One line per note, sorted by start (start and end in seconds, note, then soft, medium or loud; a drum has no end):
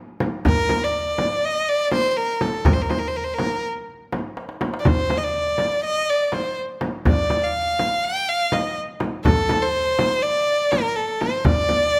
0.20 darbuka tek medium
0.20 frame drum medium
0.45 0.85 A#4 medium
0.45 frame drum medium
0.45 darbuka dum medium
0.69 darbuka tek medium
0.69 frame drum medium
0.84 1.47 D5 medium
1.18 darbuka tek medium
1.18 frame drum medium
1.43 1.70 D#5 medium
1.43 darbuka ka soft
1.69 1.93 D5 medium
1.92 2.11 C5 medium
1.92 darbuka tek medium
1.92 frame drum medium
2.11 2.18 C5 medium
2.17 2.43 A#4 medium
2.41 2.67 A4 medium
2.41 darbuka tek medium
2.41 frame drum medium
2.65 2.75 A#4 medium
2.65 darbuka dum medium
2.65 frame drum medium
2.74 2.83 C5 medium
2.82 2.92 A#4 soft
2.89 3.00 C5 medium
2.89 darbuka tek medium
2.89 frame drum medium
2.99 3.09 A#4 medium
3.08 3.18 C5 medium
3.14 3.26 A#4 soft
3.14 darbuka ka soft
3.24 3.36 C5 medium
3.34 3.65 A#4 medium
3.38 darbuka tek medium
3.38 frame drum medium
4.12 darbuka tek medium
4.12 frame drum medium
4.37 darbuka tek soft
4.49 darbuka ka medium
4.61 darbuka tek medium
4.61 frame drum medium
4.74 darbuka ka medium
4.80 4.89 D5 medium
4.85 5.20 C5 medium
4.85 frame drum medium
4.85 darbuka dum medium
5.10 darbuka tek medium
5.10 frame drum medium
5.18 5.25 D#5 medium
5.24 5.84 D5 medium
5.58 darbuka tek medium
5.58 frame drum medium
5.84 6.11 D#5 medium
5.84 darbuka ka soft
6.10 6.28 D5 medium
6.28 6.35 D5 medium
6.32 6.58 C5 medium
6.32 darbuka tek medium
6.32 frame drum medium
6.81 darbuka tek medium
6.81 frame drum medium
7.05 7.46 D5 medium
7.05 frame drum medium
7.05 darbuka dum medium
7.30 darbuka tek medium
7.30 frame drum medium
7.44 8.06 F5 medium
7.79 darbuka tek medium
7.79 frame drum medium
8.04 8.30 G5 medium
8.04 darbuka ka soft
8.29 8.55 F5 medium
8.52 8.77 D#5 medium
8.52 darbuka tek medium
8.52 frame drum medium
9.00 darbuka tek medium
9.00 frame drum medium
9.25 9.63 A4 medium
9.25 darbuka dum medium
9.25 frame drum medium
9.49 darbuka tek medium
9.49 frame drum medium
9.62 10.24 C5 medium
9.99 darbuka tek medium
9.99 frame drum medium
10.22 10.73 D5 medium
10.22 darbuka ka soft
10.71 10.98 A#4 medium
10.71 darbuka tek medium
10.71 frame drum medium
10.96 11.23 A4 medium
11.21 11.46 C5 medium
11.21 frame drum medium
11.45 12.00 D5 loud
11.45 frame drum medium
11.45 darbuka dum medium
11.69 frame drum medium
11.94 darbuka ka soft